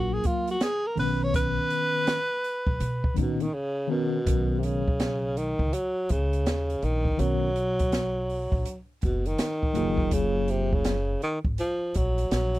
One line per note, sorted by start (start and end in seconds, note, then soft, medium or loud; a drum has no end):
0.00 0.17 A#1 medium
0.00 0.55 F#3 medium
0.00 0.55 A#3 medium
0.00 0.56 F4 medium
0.00 0.15 F#4 loud
0.00 0.56 A#4 medium
0.14 0.28 G#4 medium
0.24 0.49 F4 medium
0.24 kick loud
0.24 closed hi-hat medium
0.48 0.65 F#4 medium
0.48 closed hi-hat medium
0.61 0.88 G#4 loud
0.61 snare loud
0.61 closed hi-hat medium
0.87 0.99 A#4 medium
0.96 1.57 B1 medium
0.96 2.16 D#3 medium
0.96 2.17 B3 medium
0.96 2.17 C#4 medium
0.96 2.18 B4 medium
0.96 1.25 B4 loud
0.96 open hi-hat soft
1.23 1.35 C#5 loud
1.34 3.14 B4 loud
1.34 kick loud
1.34 closed hi-hat loud
1.70 closed hi-hat medium
2.07 snare loud
2.07 closed hi-hat loud
2.44 closed hi-hat medium
2.67 2.77 B1 medium
2.67 kick loud
2.80 3.10 B2 medium
2.80 closed hi-hat medium
3.04 kick medium
3.14 3.47 A#2 medium
3.14 3.43 B2 medium
3.14 3.45 D#3 medium
3.14 3.45 B3 medium
3.14 3.46 C#4 medium
3.14 3.46 D#4 medium
3.14 kick loud
3.14 closed hi-hat medium
3.40 3.56 D#3 medium
3.40 closed hi-hat medium
3.54 3.92 C#3 medium
3.88 4.61 B2 medium
3.88 4.18 D#3 medium
3.88 4.18 B3 medium
3.88 4.19 C#4 medium
3.88 4.19 A#4 medium
4.25 5.56 B1 loud
4.25 4.81 D#3 medium
4.25 4.82 B3 medium
4.25 4.83 C#4 medium
4.25 4.83 A#4 medium
4.25 kick loud
4.25 closed hi-hat loud
4.60 4.66 C3 medium
4.60 closed hi-hat medium
4.64 5.39 C#3 medium
4.88 kick loud
5.00 snare loud
5.00 closed hi-hat medium
5.37 5.76 D#3 medium
5.37 closed hi-hat medium
5.59 5.70 C#2 medium
5.59 kick medium
5.73 6.13 F#3 medium
5.73 closed hi-hat medium
6.09 6.46 C#2 medium
6.09 6.86 C#3 medium
6.09 kick medium
6.09 closed hi-hat medium
6.33 closed hi-hat medium
6.46 6.76 D#2 loud
6.46 snare loud
6.46 closed hi-hat medium
6.70 closed hi-hat soft
6.82 7.12 A#1 medium
6.82 7.22 D#3 medium
6.82 closed hi-hat medium
7.05 kick medium
7.17 8.49 B1 loud
7.17 7.47 D#3 medium
7.17 8.78 F#3 loud
7.17 7.48 B3 medium
7.17 7.48 C#4 medium
7.17 7.49 A#4 medium
7.17 closed hi-hat medium
7.56 closed hi-hat medium
7.79 kick medium
7.79 closed hi-hat medium
7.92 snare loud
7.92 closed hi-hat loud
8.30 open hi-hat soft
8.52 8.63 A#1 medium
8.52 kick medium
8.65 closed hi-hat medium
9.02 9.32 F#1 medium
9.02 9.29 B2 medium
9.02 kick medium
9.02 closed hi-hat medium
9.25 10.15 D#3 loud
9.25 closed hi-hat medium
9.38 snare loud
9.38 closed hi-hat medium
9.63 kick medium
9.73 11.14 F#1 loud
9.73 10.94 F#3 medium
9.73 10.95 A#3 medium
9.73 10.95 F4 medium
9.73 10.96 G#4 medium
9.73 closed hi-hat medium
9.97 kick medium
10.11 10.51 C#3 loud
10.11 kick loud
10.11 closed hi-hat loud
10.48 10.76 C3 medium
10.48 closed hi-hat medium
10.73 11.23 C#3 medium
10.73 kick medium
10.84 snare loud
10.84 closed hi-hat loud
11.22 11.39 D#3 medium
11.22 closed hi-hat medium
11.44 11.55 G#1 medium
11.44 kick medium
11.58 11.98 F3 loud
11.58 closed hi-hat medium
11.94 12.25 A#1 medium
11.94 12.32 F#3 loud
11.94 kick medium
11.94 closed hi-hat medium
12.18 closed hi-hat medium
12.31 12.59 A#1 loud
12.31 12.59 F#3 loud
12.31 snare loud
12.31 closed hi-hat loud
12.55 closed hi-hat soft